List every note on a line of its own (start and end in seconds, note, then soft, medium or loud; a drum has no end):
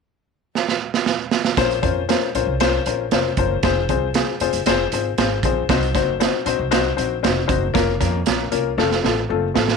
0.55 snare soft
0.69 snare medium
0.94 snare medium
1.06 snare medium
1.31 snare medium
1.45 snare medium
1.57 1.78 A#1 loud
1.57 1.75 C#4 loud
1.57 1.75 F4 medium
1.57 1.75 A#4 medium
1.57 1.75 C5 loud
1.57 kick loud
1.57 snare loud
1.57 closed hi-hat medium
1.71 closed hi-hat soft
1.83 2.14 F2 medium
1.83 2.00 C#4 medium
1.83 2.01 F4 medium
1.83 2.01 A#4 medium
1.83 2.00 C5 medium
1.83 kick medium
1.83 closed hi-hat medium
2.09 2.26 C#4 medium
2.09 2.26 F4 medium
2.09 2.26 A#4 medium
2.09 2.26 C5 medium
2.09 snare loud
2.09 closed hi-hat medium
2.35 2.45 A#1 medium
2.35 2.52 C#4 medium
2.35 2.52 F4 medium
2.35 2.53 A#4 medium
2.35 2.53 C5 medium
2.35 closed hi-hat medium
2.47 2.78 C2 medium
2.60 2.78 C#4 loud
2.60 2.78 F4 medium
2.60 2.78 A#4 medium
2.60 2.78 C5 loud
2.60 snare loud
2.60 closed hi-hat medium
2.86 3.07 A#1 medium
2.86 3.04 C#4 medium
2.86 3.04 F4 medium
2.86 3.04 A#4 medium
2.86 3.04 C5 medium
2.86 closed hi-hat medium
3.11 3.32 F1 medium
3.11 3.29 C#4 medium
3.11 3.30 F4 medium
3.11 3.30 A#4 medium
3.11 3.30 C5 medium
3.11 snare loud
3.11 closed hi-hat medium
3.37 3.58 F#1 medium
3.37 3.55 C#4 medium
3.37 3.55 F4 medium
3.37 3.56 A#4 medium
3.37 3.56 C5 medium
3.37 kick medium
3.37 closed hi-hat medium
3.63 3.84 F1 loud
3.63 3.81 C4 loud
3.63 3.81 F4 medium
3.63 3.81 G#4 medium
3.63 3.81 C5 loud
3.63 kick loud
3.63 snare loud
3.63 closed hi-hat medium
3.89 4.20 C2 medium
3.89 4.07 C4 medium
3.89 4.07 F4 medium
3.89 4.07 G#4 medium
3.89 4.07 C5 medium
3.89 kick medium
3.89 closed hi-hat medium
4.14 4.32 C4 medium
4.14 4.33 F4 medium
4.14 4.32 G#4 medium
4.14 4.32 C5 medium
4.14 snare loud
4.14 closed hi-hat medium
4.40 4.51 F1 medium
4.40 4.58 C4 medium
4.40 4.59 F4 medium
4.40 4.59 G#4 medium
4.40 4.58 C5 medium
4.40 closed hi-hat medium
4.53 4.64 F#1 medium
4.53 closed hi-hat soft
4.66 4.87 F1 medium
4.66 4.84 C4 loud
4.66 4.84 F4 medium
4.66 4.84 G#4 medium
4.66 4.84 C5 loud
4.66 snare loud
4.66 closed hi-hat medium
4.92 5.13 G#1 medium
4.92 5.10 C4 medium
4.92 5.10 F4 medium
4.92 5.10 G#4 medium
4.92 5.10 C5 medium
4.92 closed hi-hat medium
5.18 5.39 G#1 medium
5.18 5.35 C4 medium
5.18 5.36 F4 medium
5.18 5.36 G#4 medium
5.18 5.35 C5 medium
5.18 snare loud
5.18 closed hi-hat medium
5.43 5.64 A#1 medium
5.43 5.61 C4 medium
5.43 5.62 F4 medium
5.43 5.62 G#4 medium
5.43 5.62 C5 medium
5.43 kick medium
5.43 closed hi-hat medium
5.69 5.90 C2 loud
5.69 5.87 C4 loud
5.69 5.87 D#4 medium
5.69 5.87 F#4 medium
5.69 5.87 C5 loud
5.69 kick loud
5.69 snare loud
5.69 closed hi-hat medium
5.83 closed hi-hat soft
5.95 6.26 F#1 medium
5.95 6.12 C4 medium
5.95 6.12 D#4 medium
5.95 6.12 F#4 medium
5.95 6.12 C5 loud
5.95 kick medium
5.95 snare soft
5.95 closed hi-hat medium
6.20 6.38 C4 medium
6.20 6.38 D#4 medium
6.20 6.38 F#4 medium
6.20 6.38 C5 medium
6.20 snare loud
6.20 closed hi-hat medium
6.46 6.56 A#1 medium
6.46 6.63 C4 medium
6.46 6.64 D#4 medium
6.46 6.64 F#4 medium
6.46 6.64 C5 medium
6.46 closed hi-hat medium
6.59 6.90 C2 medium
6.71 6.89 C4 medium
6.71 6.89 D#4 medium
6.71 6.89 F#4 medium
6.71 6.89 C5 loud
6.71 snare loud
6.71 closed hi-hat medium
6.97 7.19 A#1 medium
6.97 7.15 C4 medium
6.97 7.15 D#4 medium
6.97 7.15 F#4 medium
6.97 7.15 C5 medium
6.97 closed hi-hat medium
7.23 7.45 F1 medium
7.23 7.41 C4 medium
7.23 7.41 D#4 medium
7.23 7.41 F#4 medium
7.23 7.41 C5 medium
7.23 snare loud
7.23 closed hi-hat medium
7.47 7.70 F#1 medium
7.47 7.66 C4 medium
7.47 7.66 D#4 medium
7.47 7.66 F#4 medium
7.47 7.66 C5 medium
7.47 kick loud
7.47 closed hi-hat medium
7.74 7.96 F1 loud
7.74 7.92 A#3 loud
7.74 7.92 C#4 medium
7.74 7.92 F4 medium
7.74 7.92 A#4 loud
7.74 kick loud
7.74 snare loud
7.74 closed hi-hat medium
8.00 8.21 F2 loud
8.00 8.18 A#3 medium
8.00 8.18 C#4 medium
8.00 8.18 F4 medium
8.00 8.18 A#4 medium
8.00 kick medium
8.00 snare soft
8.00 closed hi-hat medium
8.26 8.47 A#1 medium
8.26 8.44 A#3 medium
8.26 8.44 C#4 medium
8.26 8.44 F4 medium
8.26 8.44 A#4 medium
8.26 snare loud
8.26 closed hi-hat medium
8.51 8.73 C2 medium
8.51 8.69 A#3 medium
8.51 8.69 C#4 medium
8.51 8.70 F4 medium
8.51 8.69 A#4 medium
8.51 closed hi-hat medium
8.78 8.98 F1 loud
8.78 8.95 A3 loud
8.78 8.95 C4 medium
8.78 8.96 F4 medium
8.78 8.96 A4 loud
8.78 snare soft
8.91 snare soft
9.03 9.25 A1 medium
9.03 9.21 A3 medium
9.03 9.21 C4 medium
9.03 9.21 F4 medium
9.03 9.21 A4 medium
9.03 snare medium
9.29 9.50 F#1 medium
9.29 9.47 A3 medium
9.29 9.47 C4 medium
9.29 9.47 F4 medium
9.29 9.47 A4 medium
9.54 9.76 A1 medium
9.54 9.72 A3 medium
9.54 9.72 C4 medium
9.54 9.73 F4 medium
9.54 9.73 A4 medium
9.54 snare loud
9.68 snare medium